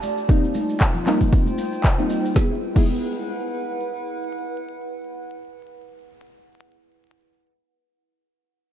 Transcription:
Already playing: A3 C4 D4 F4 G4 D5 A5
0.02 high conga, maracas
0.18 maracas
0.28 G3 A#3 C4 D#4 F4, kick, maracas
0.44 maracas
0.54 high conga, maracas
0.69 maracas
0.80 C5, kick, clap, maracas
0.89 G5
0.94 low conga, maracas
1.06 G3 A#3 C4 D#4, clap, maracas
1.21 kick, low conga, maracas
1.33 kick, maracas
1.46 high conga, maracas
1.58 maracas
1.73 maracas
1.84 kick, clap, maracas
1.98 G3 A#3 C4 D#4, maracas
2.10 maracas
2.25 maracas
2.35 G#3 B3 E4 G#4, kick, snare
2.45 B4
2.53 F#5
2.75 G#3 B3 E4 G#4, kick, crash

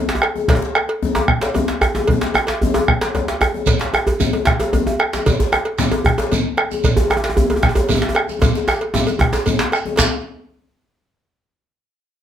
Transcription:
0.09 djembe slap
0.15 djembe tone
0.22 bombo rim, cowbell, djembe slap
0.36 djembe tone
0.48 bombo rim, bombo low, cowbell, djembe slap, djembe bass
0.55 djembe tone
0.62 djembe slap
0.75 bombo rim, cowbell, djembe slap
0.88 bombo rim, cowbell
1.03 djembe bass
1.15 cowbell, djembe tone
1.28 bombo rim, bombo low
1.41 cowbell, djembe slap
1.54 cowbell, djembe tone, djembe bass
1.68 djembe slap
1.81 bombo rim, cowbell, djembe slap, djembe bass
1.95 djembe tone
2.07 bombo rim, bombo low, cowbell, djembe bass
2.21 bombo rim, djembe slap
2.24 djembe slap
2.34 bombo rim, cowbell, djembe tone
2.47 cowbell, djembe slap
2.51 djembe slap
2.62 bombo rim, djembe bass
2.63 djembe bass
2.74 cowbell, djembe tone
2.88 bombo rim, bombo low, djembe slap
3.01 cowbell, djembe slap
3.15 bombo rim, cowbell, djembe slap, djembe tone, djembe bass
3.28 djembe slap
3.40 bombo rim, cowbell, djembe slap, djembe bass
3.54 djembe tone
3.66 bombo rim, bombo low, cowbell, djembe slap, djembe bass, shekere
3.79 djembe slap
3.93 bombo rim, cowbell, djembe slap, djembe tone
4.07 cowbell, djembe bass
4.20 djembe tone, djembe bass, shekere
4.33 cowbell, djembe tone
4.45 bombo rim, bombo low, djembe slap
4.59 cowbell, djembe slap, djembe tone
4.73 cowbell, djembe bass
4.87 djembe tone
5.00 bombo rim, cowbell, djembe slap
5.13 djembe slap, djembe tone, shekere
5.26 bombo rim, bombo low, cowbell, djembe slap, djembe tone, djembe bass, shekere
5.40 djembe slap, djembe bass
5.52 bombo rim, cowbell, djembe slap, djembe tone
5.65 cowbell
5.78 djembe slap, djembe bass, shekere
5.91 cowbell, djembe tone
5.93 djembe tone
6.04 bombo rim, bombo low, djembe bass
6.18 cowbell, djembe slap, djembe tone
6.32 cowbell, djembe bass, shekere
6.57 bombo rim, cowbell, djembe slap
6.71 djembe tone, shekere
6.84 bombo rim, bombo low, cowbell, djembe slap, djembe bass, shekere
6.97 djembe slap, djembe bass
7.10 bombo rim, cowbell, djembe slap, djembe tone
7.17 djembe tone
7.24 cowbell, djembe slap
7.30 djembe tone
7.37 djembe bass
7.50 cowbell, djembe tone
7.56 djembe tone
7.63 bombo rim, bombo low, djembe slap
7.69 djembe tone
7.75 cowbell, djembe slap, djembe bass
7.89 cowbell, djembe tone, djembe bass, shekere
7.95 djembe tone
8.02 djembe slap
8.09 djembe tone
8.15 bombo rim, cowbell, djembe slap
8.29 djembe tone, shekere
8.42 bombo low, cowbell, djembe tone, djembe bass, shekere
8.55 djembe slap, shekere
8.68 bombo rim, cowbell, djembe slap, djembe tone, shekere
8.81 cowbell, djembe slap
8.94 bombo rim, djembe tone, djembe bass, shekere
9.07 cowbell, djembe slap, djembe tone, shekere
9.19 bombo rim, bombo low, djembe slap, djembe tone
9.33 cowbell, djembe slap, djembe tone, shekere
9.46 cowbell, djembe bass, shekere
9.59 djembe slap
9.72 bombo rim, cowbell, shekere
9.86 djembe tone
9.97 bombo low, cowbell, djembe slap, djembe bass, shekere

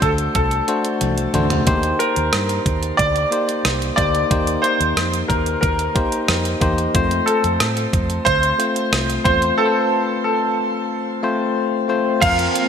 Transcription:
Already playing: A3 D4 F#4 C5
0.02 D2 A4, kick, closed hi-hat
0.18 closed hi-hat
0.35 C2 A4, kick, closed hi-hat
0.51 closed hi-hat
0.68 A3 D4 F#4 C5, closed hi-hat
0.85 closed hi-hat
1.01 C2, closed hi-hat, high tom
1.18 closed hi-hat
1.34 D2 A3 D4 F#4 C5, closed hi-hat, mid tom
1.50 closed hi-hat, floor tom
1.66 D#2 A#3 D#4 G4 C5, kick, closed hi-hat
1.83 closed hi-hat
1.99 A#4, closed hi-hat
2.16 D#2, closed hi-hat
2.33 G2, cross-stick, closed hi-hat
2.49 closed hi-hat
2.66 D#2, kick, closed hi-hat
2.83 closed hi-hat
2.97 D2 D5, kick, closed hi-hat
3.16 closed hi-hat
3.31 A#3 D#4 G4 C5, closed hi-hat
3.49 closed hi-hat
3.65 C2, cross-stick, closed hi-hat
3.82 closed hi-hat
3.96 D2 A#3 D#4 G4 C5 D5, kick, closed hi-hat
4.15 closed hi-hat
4.30 D#2 A#3 D#4 G4 C5, kick, closed hi-hat
4.47 closed hi-hat
4.62 C5, closed hi-hat
4.80 D#2, closed hi-hat
4.97 F2, cross-stick, closed hi-hat
5.14 closed hi-hat
5.28 D#2 A#4, kick, closed hi-hat
5.46 closed hi-hat
5.61 D#2 A#4, kick, closed hi-hat
5.79 closed hi-hat
5.95 A#3 D#4 G4 C5, kick, closed hi-hat
6.12 closed hi-hat
6.28 F2, cross-stick, closed hi-hat
6.45 closed hi-hat
6.61 E2 A#3 D#4 G4 C5, kick, closed hi-hat
6.78 closed hi-hat
6.94 F2 A3 C4 F4 C5, kick, closed hi-hat
7.11 closed hi-hat
7.26 A4, closed hi-hat
7.44 F2, closed hi-hat
7.60 A2, cross-stick, closed hi-hat
7.77 closed hi-hat
7.93 F2, kick, closed hi-hat
8.10 closed hi-hat
8.25 D2 C5, kick, closed hi-hat
8.43 closed hi-hat
8.59 A3 C4 F4 C5, closed hi-hat
8.76 closed hi-hat
8.92 C2, cross-stick, closed hi-hat
9.10 closed hi-hat
9.24 E2 A3 C4 F4 C5, kick, closed hi-hat
9.42 closed hi-hat
9.58 A3 C4 F4 A4 B4
9.65 C5
10.24 A4
11.23 A3 C4 F4 C5
11.88 A3 C4 F4 C5
12.21 F2 F3 A#3 C4 F4 A#4 F5, kick, closed hi-hat, crash
12.25 F4
12.39 closed hi-hat
12.56 closed hi-hat

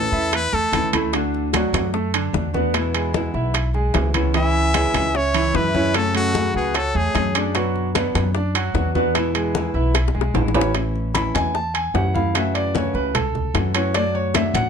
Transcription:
Already playing: E3 A3 C#4 E4 A4
0.12 E2 E4 E5, high bongo
0.32 B4, muted nylon-string guitar stroke, high bongo, high conga, high timbale
0.53 E2 A3 A4, high bongo, high conga
0.73 D2 E3 A3 C#4 E4, high bongo, low bongo, high conga, high timbale
0.93 A3 C#4 E4 A4, high bongo, high conga, high timbale
1.13 D3 A3 D4 F#4, high bongo, high conga, high timbale
1.34 high conga
1.53 D3 F#3 A3 D4 F#4, high bongo, high conga, high timbale
1.73 F#2, high conga, high timbale
1.94 A3 A4, muted nylon-string guitar stroke, high bongo, high conga
2.14 D3 D4, high conga, high timbale
2.33 E2 D3 A3 D4 F#4, high bongo, low bongo, high conga
2.54 A3 B3 D4 F#4 B4, high conga
2.74 B2 E3 G#3 B3 E4, high bongo, high conga, high timbale
2.94 G#3 G#4, high conga, high timbale
3.13 B2 E3 G#3 B3 E4, high bongo, high conga
3.34 B1 E4 E5, high bongo
3.54 muted nylon-string guitar stroke, high bongo, high conga, high timbale
3.74 G#3 G#4, high bongo, high conga
3.94 C#2 E3 G#3 B3 E4, high bongo, low bongo, high conga, high timbale, low timbale
4.14 E3 G#3 B3 C#4 E4 C#5, high bongo, high conga, high timbale
4.34 C#3 E3 G#3 C#4 E4 E5 G#5, high bongo, high conga, high timbale
4.55 high conga
4.74 C#3 E3 G#3 C#4 E4 G#4, high bongo, high conga, high timbale
4.94 C#2, high conga, high timbale
5.14 C#4 C#5 E5, muted nylon-string guitar stroke, high bongo
5.34 E3 E4, high conga, high timbale
5.54 F#2 E3 G#3 C#4 E4 B4 E5, high bongo, low bongo, high conga
5.74 E3 G#3 C#4 E4 C#5, high conga
5.94 C#3 F#3 A3 C#4 G#4 A4 C#5, high bongo, high conga, high timbale
6.14 A3 F#4 A4, high conga, high timbale
6.34 C#3 F#3 A3 C#4 G#4, high bongo, high conga
6.54 C#2 F#4 G#4 B4 F#5, high bongo
6.75 A4 C#5, muted nylon-string guitar stroke, high bongo, high conga, high timbale
6.94 E2 A3 G#4 C#5, high bongo, high conga
7.14 F#2 F#3 A3 C#4 G#4, high bongo, low bongo, high conga, high timbale
7.35 F#3 A3 C#4 D4 G#4 D5, high bongo, high timbale
7.55 B2 F#3 B3 D4 F#4, high bongo, high conga, high timbale
7.76 high conga
7.95 B2 F#3 B3 D4 F#4 B4, high bongo, high conga, high timbale
8.15 F#2, high conga, high timbale
8.35 D4 D5, muted nylon-string guitar stroke, high bongo, high conga
8.55 F#3 F#4, high conga, high timbale
8.74 E2 F#3 B3 D4 F#4, high bongo, low bongo, high conga
8.95 F#3 B3 D4 F#4 B4, high conga
9.15 B2 E3 G#3 B3 E4, high bongo, high conga, high timbale
9.35 G#3 G#4, high conga, high timbale
9.55 B2 E3 G#3 B3 E4, high bongo, high conga
9.74 B1 E4 E5, high bongo
9.95 muted nylon-string guitar stroke, high bongo, high conga, high timbale
10.08 high bongo
10.14 B1 G#3 G#4, high conga
10.21 high bongo
10.34 A1 E3 G#3 B3 E4, low bongo, high conga, high timbale
10.48 low bongo
10.54 E3 G#3 B3 C#4 E4 C#5, high conga, low timbale
10.61 low bongo
10.74 E3 A3 C#4 E4, high bongo, high conga, high timbale
10.95 high conga
11.14 E3 A3 C#4 E4 B5, high bongo, high conga, high timbale
11.34 E2 G#5, high conga, high timbale
11.54 A5, muted nylon-string guitar stroke, high bongo, high conga
11.74 G#5, high conga, high timbale
11.94 F#2 E3 A3 C#4 E4 F#5, high bongo, low bongo, high conga, low timbale
12.14 A3 C#4 E4 F5, high conga
12.35 C#3 E3 A3 C#4 F#4 E5, high bongo, high timbale
12.55 D5, high conga, high timbale
12.75 C#3 E3 A3 C#4 F#4 C#5, high bongo, high conga
12.94 C#2 B4, high bongo
13.14 A4, muted nylon-string guitar stroke, high bongo, high conga, low conga, high timbale
13.35 high bongo, high conga, low conga
13.54 F#2 E3 A3 C#4 F#4, high bongo, low bongo, high conga, high timbale
13.75 E3 A3 C#4 F#4 C#5, high bongo, high timbale
13.94 F#3 A3 D4 F#4 D5, high bongo, high conga, high timbale
14.15 C#5, high conga
14.34 F#3 A3 D4 F#4 E5, high bongo, high conga, high timbale
14.54 A1 F#5, high conga, high timbale

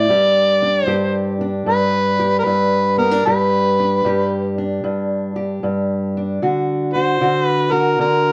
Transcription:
Already playing: D5
0.09 G2 G4
0.62 D4
0.85 G2 G4 C5
1.41 D4
1.66 G2 B4
2.19 G4
2.39 A#4
2.44 G2 B4
2.97 B3 A#4
3.11 D4
3.26 G2 G4 B4
3.80 D4
4.05 G2 G4
4.58 D4
4.84 G2
5.36 G4
5.63 G2
6.17 D4
6.42 D3 F#4
6.94 F#4 C5
7.21 D3 F#4
7.45 B4
7.72 F#4 A#4
7.99 D3 A#4

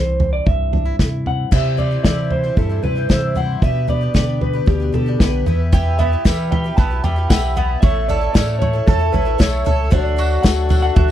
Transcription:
Already playing: C2 E3 C4 E4 C5
0.20 C4, floor tom
0.33 D5
0.46 C2 G2 E5, kick, floor tom
0.72 D4, floor tom
0.85 E4
0.99 C3 E4, kick, snare, floor tom
1.26 C4 F#5, floor tom
1.51 C3 E3 G3 C4 E4 C5 E5, kick, floor tom, crash
1.77 G3 C4 E4 C5 D5, floor tom
1.91 G3 C4 E4 C5
2.04 C3 E3 G3 C4 E4 C5 D5, kick, snare, floor tom
2.31 C4 C5, floor tom
2.43 G3 C4 E4 C5
2.56 G2 G3 C4 E4 A4 C5, kick, floor tom
2.69 G3 C4 E4 C5
2.82 C3 G3 C4 E4 B4 C5, floor tom
2.95 G3 C4 E4 C5
3.09 C3 E3 G3 C4 E4 C5, kick, snare, floor tom
3.35 G3 C4 E4 C5 F#5, floor tom
3.62 B2 B3 D4 G4 B4 E5, kick, floor tom
3.87 B3 D4 G4 B4 D5, floor tom
4.01 D4 G4 B4
4.14 B2 D3 B3 D4 G4 B4 D5, kick, snare, floor tom
4.41 B3 B4, floor tom
4.53 D4 G4 B4
4.66 D2 B2 B3 D4 G4 B4, kick, floor tom
4.80 D4 G4 B4
4.93 B2 B3 D4 G4 A4 B4, floor tom
5.06 D4 G4 B4
5.20 B1 D3 B3 D4 G4 B4, kick, snare, floor tom
5.46 E2 B3 E4 G4 B4, floor tom
5.72 E3 B3 E4 G4 B4, kick, floor tom
5.99 B3 E4 G4 B4 E5, floor tom
6.12 E4 G4 B4
6.25 E3 G3 B3 E4 G4 B4, kick, snare, floor tom, tambourine
6.52 G4 G5, floor tom
6.64 E4 G4 B4
6.77 B1 B3 E4 G4 B4 A5, kick, floor tom
6.90 E4 G4 B4
7.04 E2 G3 B3 E4 G4 B4 G5, floor tom
7.16 E4 G4 B4
7.29 B1 E3 B3 E4 G4 B4 F#5, kick, snare, floor tom, tambourine
7.56 B3 E4 G4 B4 F#5, floor tom
7.81 A1 A2 A3 C#4 E4 A4 E5, kick, floor tom
8.08 A3 C#4 E4 A4 D5, floor tom
8.21 C#4 E4 A4
8.33 A2 A3 C#4 E4 A4 D5, kick, snare, floor tom, tambourine
8.59 A3 C#5, floor tom
8.73 C#4 E4 A4
8.87 E2 A3 C#4 E4 A4, kick, floor tom
8.99 C#4 E4 A4
9.12 A1 A3 C#4 E4 A4 B4, floor tom
9.25 C#4 E4 A4
9.38 B1 A2 A3 C#4 E4 A4 C#5, kick, snare, floor tom, tambourine
9.65 C#2 A3 C#4 E4 A4, floor tom
9.90 D2 D3 F#3 A3 D4 F#4 A4 D5, kick, floor tom, tambourine
10.16 F#3 A3 D4 F#4, tambourine
10.32 tambourine
10.43 D2 D3 F#3 A3 D4 F#4 F#5, kick, snare, tambourine
10.69 F#3 A3 D4 F#4, floor tom, tambourine
10.82 A3 D4 F#4 F#5
10.95 D2 F#4 E5, kick, floor tom

